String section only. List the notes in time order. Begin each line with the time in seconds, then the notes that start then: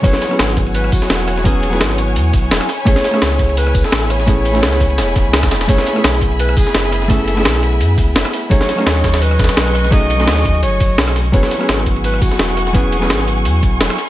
Already playing: C#5
0.04 F#5 G#5
2.69 B5
5.69 E5
8.50 D#5 G#5 C#6
11.33 F#5 G#5 C#6
13.98 B5